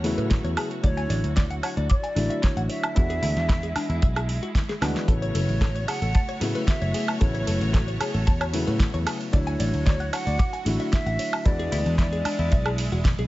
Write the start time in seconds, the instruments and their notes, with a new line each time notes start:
Already playing: picked electric bass E2, string section A3 F#4 C#5, flute C#5
0.03 grand piano C#3 F#3 A3 B3 E4, open hi-hat
0.18 picked electric bass A2, clean electric guitar B4, closed hi-hat
0.31 kick, snare, closed hi-hat
0.44 picked electric bass E2, clean electric guitar C#5, closed hi-hat
0.57 clean electric guitar G#4, open hi-hat, high woodblock
0.71 closed hi-hat
0.82 picked electric bass D2, grand piano D3 F#3 A3 E4, flute C#5, clean electric guitar D5, kick, closed hi-hat
0.97 clean electric guitar G#5, closed hi-hat
1.10 picked electric bass A1, clean electric guitar D5, open hi-hat
1.24 picked electric bass D2, closed hi-hat
1.36 clean electric guitar D5, kick, snare, closed hi-hat
1.50 clean electric guitar F#5, closed hi-hat
1.63 clean electric guitar C#5, flute F#5, open hi-hat, high woodblock
1.77 picked electric bass D2, clean electric guitar D5, closed hi-hat
1.90 flute D5, clean electric guitar D6, kick, closed hi-hat
2.04 clean electric guitar G#5, closed hi-hat
2.15 picked electric bass A1, grand piano D3 F#3 A3 E4, open hi-hat
2.30 clean electric guitar E5, closed hi-hat
2.43 flute C#5, kick, snare, closed hi-hat
2.57 picked electric bass A1, clean electric guitar F#5, closed hi-hat
2.69 clean electric guitar C#5, flute E5, open hi-hat
2.83 closed hi-hat, high woodblock
2.95 picked electric bass E2, grand piano E3 G#3 B3 D4 F#4, string section G#3 E4, clean electric guitar E4, kick, closed hi-hat
3.10 clean electric guitar G#4, closed hi-hat
3.23 picked electric bass D2, clean electric guitar E4, open hi-hat
3.37 picked electric bass E2, snare, closed hi-hat
3.49 clean electric guitar E4, kick, snare, closed hi-hat
3.63 clean electric guitar G#4, closed hi-hat
3.76 clean electric guitar D4, muted picked electric bass stroke, open hi-hat, high woodblock
3.89 picked electric bass E2, clean electric guitar E4, closed hi-hat
4.02 picked electric bass B1, clean electric guitar E5, kick, closed hi-hat
4.16 clean electric guitar G#4, closed hi-hat, high woodblock
4.29 open hi-hat
4.43 clean electric guitar F#4, closed hi-hat
4.55 kick, snare, closed hi-hat
4.69 clean electric guitar G#4, snare, closed hi-hat
4.81 picked electric bass D2, grand piano E3 G#3 B3 D4 F#4, clean electric guitar D4, snare, open hi-hat, high woodblock
4.96 snare, closed hi-hat
5.07 picked electric bass A1, grand piano C#3 F#3 A3 B3 E4, string section A3 F#4 C#5, clean electric guitar A4, flute C#5, kick, closed hi-hat
5.22 clean electric guitar C#5, closed hi-hat
5.35 picked electric bass F#1, clean electric guitar A4, open hi-hat, ride
5.49 picked electric bass A1, closed hi-hat
5.61 clean electric guitar A4, kick, snare, closed hi-hat
5.75 clean electric guitar C#5, closed hi-hat
5.88 clean electric guitar G#4, flute F#5, open hi-hat, ride, high woodblock
6.02 picked electric bass A1, clean electric guitar A4, closed hi-hat
6.15 clean electric guitar A5, kick, closed hi-hat
6.29 clean electric guitar C#5, closed hi-hat
6.40 picked electric bass A2, grand piano C#3 F#3 A3 B3 E4, open hi-hat, ride
6.55 clean electric guitar B4, closed hi-hat
6.68 flute E5, kick, snare, closed hi-hat
6.82 picked electric bass F#1, clean electric guitar C#5, closed hi-hat
6.94 clean electric guitar G#4, open hi-hat, ride
7.08 closed hi-hat, high woodblock
7.20 picked electric bass A1, grand piano C#3 F#3 A3 B3 E4, clean electric guitar A4, flute C#5, kick, closed hi-hat
7.34 clean electric guitar C#5, closed hi-hat
7.47 picked electric bass F#1, clean electric guitar A4, open hi-hat, ride
7.61 picked electric bass A1, closed hi-hat
7.74 clean electric guitar A4, flute C#5, kick, snare, closed hi-hat
7.88 clean electric guitar C#5, closed hi-hat
8.00 clean electric guitar G#4, open hi-hat, ride, high woodblock
8.14 picked electric bass A1, clean electric guitar A4, closed hi-hat
8.27 picked electric bass E2, clean electric guitar A5, kick, closed hi-hat
8.41 clean electric guitar C#5, closed hi-hat, high woodblock
8.53 grand piano C#3 F#3 A3 B3 E4, open hi-hat, ride
8.67 picked electric bass A2, clean electric guitar B4, closed hi-hat
8.80 kick, snare, closed hi-hat
8.94 picked electric bass E2, clean electric guitar C#5, closed hi-hat
9.06 clean electric guitar G#4, open hi-hat, ride, high woodblock
9.21 closed hi-hat
9.32 picked electric bass D2, grand piano D3 F#3 A3 E4, string section F#4, flute C#5, clean electric guitar D5, kick, closed hi-hat
9.47 clean electric guitar G#5, closed hi-hat
9.60 picked electric bass A1, clean electric guitar D5, open hi-hat, ride
9.74 picked electric bass D2, closed hi-hat
9.86 clean electric guitar D5, kick, snare, closed hi-hat
10.00 clean electric guitar F#5, closed hi-hat
10.13 clean electric guitar C#5, flute F#5, open hi-hat, ride, high woodblock
10.27 picked electric bass D2, clean electric guitar D5, closed hi-hat
10.39 clean electric guitar D6, kick, closed hi-hat
10.53 clean electric guitar G#5, closed hi-hat
10.65 picked electric bass A1, grand piano D3 F#3 A3 E4, open hi-hat, ride
10.80 clean electric guitar E5, closed hi-hat
10.93 flute E5, kick, snare, closed hi-hat
11.06 picked electric bass A1, clean electric guitar F#5, closed hi-hat
11.19 clean electric guitar C#5, open hi-hat, ride
11.33 closed hi-hat, high woodblock
11.45 picked electric bass E2, grand piano E3 G#3 B3 D4 F#4, string section G#3 E4, clean electric guitar E4, flute D5, kick, closed hi-hat
11.59 clean electric guitar G#4, closed hi-hat
11.72 picked electric bass D2, clean electric guitar E4, open hi-hat, ride
11.86 picked electric bass E2, closed hi-hat
11.98 clean electric guitar E4, flute D5, kick, snare, closed hi-hat
12.12 clean electric guitar G#4, closed hi-hat
12.25 clean electric guitar D4, muted picked electric bass stroke, open hi-hat, ride, high woodblock
12.39 picked electric bass E2, clean electric guitar E4, closed hi-hat
12.52 picked electric bass B1, clean electric guitar E5, kick, closed hi-hat
12.66 clean electric guitar G#4, closed hi-hat, high woodblock
12.78 open hi-hat, ride
12.92 picked electric bass E1, clean electric guitar F#4, closed hi-hat
13.05 kick, snare, closed hi-hat
13.19 picked electric bass B1, clean electric guitar G#4, closed hi-hat